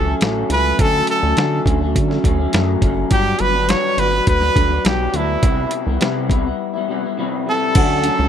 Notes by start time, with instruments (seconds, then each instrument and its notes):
Already playing: analog synth bass C#2, trumpet A4
0.05 clean electric guitar F#3 A3 C#4
0.20 analog synth bass A1, clean electric guitar D3 F#3 A3 C#4, snare, closed hi-hat
0.49 analog synth bass C#2, clean electric guitar D3 F#3 A3 C#4, trumpet B4, closed hi-hat
0.79 analog synth bass D2, clean electric guitar D3 F#3 A3 C#4, trumpet A4, kick, closed hi-hat
1.07 trumpet A4, closed hi-hat
1.22 analog synth bass D2, clean electric guitar F#3 A3 C#4
1.37 clean electric guitar D3 F#3 A3 C#4, analog synth bass D3, snare, closed hi-hat
1.65 analog synth bass D2, clean electric guitar D3 F#3 A3 C#4, kick, closed hi-hat
1.80 clean electric guitar F#3 A3 C#4
1.96 analog synth bass D3, kick, closed hi-hat
2.08 clean electric guitar F#3 A3 C#4, snare
2.23 analog synth bass D2, clean electric guitar D3 F#3 A3 C#4, kick, closed hi-hat
2.38 clean electric guitar F#3 A3 C#4
2.52 analog synth bass F#2, clean electric guitar D3 F#3 A3 C#4, snare, closed hi-hat
2.81 analog synth bass F#1, clean electric guitar D3 F#3 A3 C#4, kick, closed hi-hat
3.10 analog synth bass G1, clean electric guitar G2 F#3 B3 D4, trumpet G4, kick, closed hi-hat
3.39 analog synth bass G1, trumpet B4, closed hi-hat
3.53 clean electric guitar F#3 B3 D4
3.67 clean electric guitar G2 F#3 B3 D4, trumpet C#5, snare, closed hi-hat
3.96 analog synth bass G1, clean electric guitar G2 F#3 B3 D4, trumpet B4, closed hi-hat
4.11 clean electric guitar F#3 B3 D4
4.27 analog synth bass D2, trumpet B4, kick, closed hi-hat
4.40 clean electric guitar F#3 B3 D4, snare
4.55 analog synth bass D2, clean electric guitar G2 F#3 B3 D4, kick, closed hi-hat
4.70 clean electric guitar F#3 B3 D4
4.84 analog synth bass B1, clean electric guitar G2 F#3 B3 D4, trumpet G4, snare, closed hi-hat
5.14 analog synth bass D2, clean electric guitar G2 F#3 B3 D4, trumpet E4, closed hi-hat
5.43 analog synth bass C2, clean electric guitar C3 G3 B3 E4, kick, closed hi-hat
5.71 closed hi-hat
5.86 analog synth bass C2, clean electric guitar G3 B3 E4
6.01 clean electric guitar C3 G3 B3 E4, analog synth bass C3, snare, closed hi-hat
6.30 analog synth bass C2, clean electric guitar C3 G3 B3 E4, kick, closed hi-hat
6.44 clean electric guitar G3 B3 E4
6.74 clean electric guitar G3 B3 E4
6.88 clean electric guitar C3 G3 B3 E4
7.03 clean electric guitar G3 B3 E4
7.17 clean electric guitar C3 G3 B3 E4
7.47 clean electric guitar C3 G3 B3 E4, trumpet A4
7.75 analog synth bass D2, clean electric guitar D3 F#3 A3 C#4, vibraphone D5 F#5, kick, closed hi-hat, crash
8.04 clean electric guitar D3 F#3 A3, closed hi-hat
8.08 clean electric guitar C#4
8.19 analog synth bass C#2, vibraphone C#5 E5